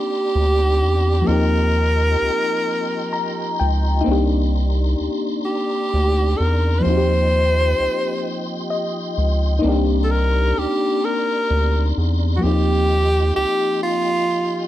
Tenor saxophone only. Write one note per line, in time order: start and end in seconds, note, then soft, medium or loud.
0.00 1.29 G4 loud
1.27 3.59 A#4 loud
5.45 6.39 G4 loud
6.37 6.80 A#4 medium
6.79 6.85 B4 medium
6.83 8.70 C5 loud
10.04 10.13 A4 medium
10.11 10.60 A#4 loud
10.59 11.06 G4 loud
11.05 11.97 A#4 medium
12.36 12.45 F#4 medium
12.43 13.36 G4 loud
13.36 13.79 G4 loud
13.83 14.68 F4 loud